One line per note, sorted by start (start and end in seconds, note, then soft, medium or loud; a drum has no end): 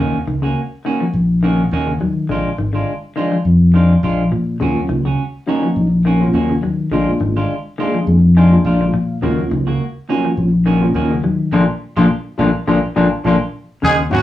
0.00 0.12 D#2 medium
0.00 0.21 C#3 medium
0.00 0.17 D#3 medium
0.00 0.17 A#3 medium
0.00 0.17 C#4 medium
0.00 0.18 F#4 medium
0.27 0.52 C#2 medium
0.27 0.40 D#3 medium
0.42 0.66 C#3 medium
0.42 0.60 A#3 soft
0.42 0.60 C#4 soft
0.42 0.60 F#4 medium
0.85 0.98 D#3 medium
0.85 1.04 A#3 medium
0.85 1.04 C#4 medium
0.85 1.04 F#4 medium
1.01 1.24 F3 medium
1.13 1.63 A#1 medium
1.43 1.66 D#3 medium
1.43 1.62 D#3 medium
1.43 1.62 A#3 medium
1.43 1.62 C#4 medium
1.43 1.62 F#4 medium
1.71 1.96 D#2 medium
1.71 1.91 D#3 medium
1.71 1.91 A#3 medium
1.71 1.91 C#4 medium
1.71 1.91 F#4 medium
1.87 1.98 C#3 medium
2.00 2.25 D#3 medium
2.00 2.24 F#3 medium
2.29 2.43 A#1 medium
2.29 2.53 D3 medium
2.29 2.48 F3 soft
2.29 2.49 G#3 medium
2.29 2.49 D4 medium
2.29 2.49 F4 medium
2.58 2.83 G#1 medium
2.58 2.71 D#3 medium
2.73 2.97 D3 medium
2.73 2.92 G#3 soft
2.73 2.91 D4 soft
2.73 2.91 F4 medium
3.16 3.29 D#3 medium
3.16 3.35 F3 medium
3.16 3.35 G#3 medium
3.16 3.35 D4 medium
3.16 3.35 F4 medium
3.32 3.55 F3 medium
3.45 3.95 F2 medium
3.74 3.97 D#3 medium
3.74 3.93 F3 medium
3.74 3.93 G#3 medium
3.74 3.93 D4 medium
3.74 3.93 F4 medium
4.03 4.28 A#1 medium
4.03 4.22 F3 medium
4.03 4.22 G#3 medium
4.03 4.22 D4 medium
4.03 4.22 F4 medium
4.32 4.57 A#2 medium
4.32 4.55 F3 medium
4.60 4.74 D#2 medium
4.60 4.83 C#3 medium
4.60 5.07 F#3 medium
4.60 4.79 A#3 medium
4.60 5.07 A#3 medium
4.60 5.07 C#4 medium
4.60 4.80 C#4 medium
4.60 5.08 F4 medium
4.60 4.80 F#4 medium
4.89 5.14 C#2 medium
4.89 5.02 D#3 medium
5.05 5.28 C#3 medium
5.05 5.23 C#4 soft
5.05 5.22 F#4 soft
5.47 5.60 D#3 medium
5.47 5.85 F#3 medium
5.47 5.85 A#3 medium
5.47 5.66 A#3 medium
5.47 5.86 C#4 medium
5.47 5.66 C#4 medium
5.47 5.86 D#4 medium
5.47 5.67 F#4 medium
5.63 5.86 F3 medium
5.76 6.26 A#1 medium
6.05 6.28 D#3 medium
6.05 6.24 A#3 medium
6.05 6.24 C#4 medium
6.05 6.24 F#4 medium
6.20 6.57 F#3 medium
6.20 6.58 A#3 medium
6.20 6.58 C#4 medium
6.20 6.58 F4 medium
6.33 6.58 D#2 medium
6.33 6.52 A#3 medium
6.33 6.53 C#4 medium
6.33 6.53 F#4 medium
6.50 6.60 C#3 medium
6.62 6.87 D#3 medium
6.62 6.86 F#3 medium
6.91 7.05 A#1 medium
6.91 7.15 D3 medium
6.91 7.10 F3 medium
6.91 7.38 G#3 medium
6.91 7.10 G#3 medium
6.91 7.38 A#3 medium
6.91 7.38 D4 medium
6.91 7.11 D4 medium
6.91 7.39 F4 medium
6.91 7.11 F4 medium
7.20 7.45 G#1 medium
7.20 7.33 D#3 medium
7.37 7.60 D3 medium
7.37 7.53 G#3 soft
7.37 7.53 D4 soft
7.37 7.53 F4 medium
7.78 7.91 D#3 medium
7.78 8.17 G#3 medium
7.78 7.97 G#3 medium
7.78 8.17 A#3 medium
7.78 7.97 D4 medium
7.78 8.17 D4 medium
7.78 7.97 F4 medium
7.78 8.18 G#4 medium
7.78 muted clean electric guitar stroke medium
7.94 8.17 F3 medium
8.07 8.56 F2 medium
8.37 8.60 D#3 medium
8.37 8.55 F3 medium
8.37 8.55 G#3 medium
8.37 8.55 D4 medium
8.37 8.55 F4 medium
8.37 8.64 G#5 medium
8.51 8.88 G#3 medium
8.51 8.89 A#3 medium
8.51 8.89 D4 medium
8.51 8.89 F4 medium
8.65 8.89 A#1 loud
8.65 8.83 F3 medium
8.65 8.84 D4 medium
8.65 8.84 F4 medium
8.65 9.19 F5 medium
8.81 8.91 D3 medium
8.94 9.18 A#2 medium
8.94 9.17 F3 medium
9.22 9.36 D#2 medium
9.22 9.46 C#3 medium
9.22 9.41 D#3 medium
9.22 9.68 F#3 medium
9.22 9.68 A#3 medium
9.22 9.41 A#3 medium
9.22 9.69 C#4 medium
9.22 9.69 F4 medium
9.22 9.41 F#4 medium
9.22 muted clean electric guitar stroke medium
9.51 9.76 C#2 medium
9.51 9.64 D#3 medium
9.67 9.90 C#3 medium
9.67 9.84 A#3 soft
9.67 9.83 F#4 medium
9.67 muted clean electric guitar stroke soft
10.09 10.22 D#3 medium
10.09 10.47 F#3 medium
10.09 10.47 A#3 medium
10.09 10.27 A#3 medium
10.09 10.28 C#4 medium
10.09 10.48 C#4 medium
10.09 10.48 F4 medium
10.09 10.28 F#4 medium
10.25 10.48 F3 medium
10.37 10.87 A#1 medium
10.65 10.84 D#3 medium
10.65 10.89 D#3 medium
10.65 10.85 A#3 medium
10.65 10.85 C#4 medium
10.65 10.85 F#4 medium
10.81 11.18 F#3 medium
10.81 11.18 A#3 medium
10.81 11.19 C#4 medium
10.81 11.19 F4 medium
10.94 11.19 D#2 medium
10.94 11.13 D#3 medium
10.94 11.14 A#3 medium
10.94 11.14 C#4 medium
10.94 11.14 F#4 medium
11.11 11.22 C#3 medium
11.23 11.48 D#3 medium
11.23 11.47 F#3 medium
11.52 11.64 A#1 medium
11.52 11.63 A#2 medium
11.52 11.63 D3 medium
11.52 11.63 F3 medium
11.52 11.63 A#3 medium
11.52 11.63 A#3 loud
11.52 11.63 D4 medium
11.52 11.63 F4 medium
11.52 11.63 F4 loud
11.96 12.07 A#1 loud
11.96 12.06 A#2 medium
11.96 12.06 D3 medium
11.96 12.06 F3 medium
11.96 12.06 A#3 medium
11.96 12.05 D4 medium
11.96 12.06 D4 medium
11.96 12.05 F4 medium
11.96 12.06 F4 medium
12.38 12.50 A#1 medium
12.38 12.49 A#2 medium
12.38 12.49 D3 medium
12.38 12.49 F3 medium
12.38 12.49 A#3 medium
12.38 12.49 D4 medium
12.38 12.48 F4 medium
12.38 12.49 F4 loud
12.67 12.79 A#1 medium
12.67 12.78 A#2 medium
12.67 12.78 D3 medium
12.67 12.78 F3 medium
12.67 12.78 A#3 medium
12.67 12.77 D4 medium
12.67 12.78 D4 medium
12.67 12.78 F4 medium
12.96 13.08 A#1 medium
12.96 13.06 A#2 medium
12.96 13.06 D3 medium
12.96 13.06 F3 medium
12.96 13.07 A#3 medium
12.96 13.06 D4 loud
12.96 13.07 D4 medium
12.96 13.06 F4 medium
12.96 13.07 F4 medium
13.24 13.36 A#1 medium
13.24 13.35 A#2 medium
13.24 13.35 D3 medium
13.24 13.35 F3 medium
13.24 13.35 A#3 medium
13.24 13.36 A#3 medium
13.24 13.35 D4 medium
13.24 13.36 D4 loud
13.24 13.35 F4 medium
13.24 13.36 F4 medium
13.82 14.07 D#2 medium
13.82 13.96 G#2 medium
13.82 14.05 C#3 medium
13.82 14.01 D#3 medium
13.82 13.97 G#3 medium
13.82 14.01 C#4 medium
13.82 14.02 F#4 medium
13.82 13.97 G#4 medium
13.82 muted clean electric guitar stroke medium
14.10 14.22 F#2 medium
14.10 14.22 G#2 medium
14.10 14.22 D#3 medium
14.10 14.22 F#3 medium
14.10 14.22 A#3 medium
14.10 14.22 C#4 medium
14.10 14.22 F#4 medium
14.10 14.22 F5 medium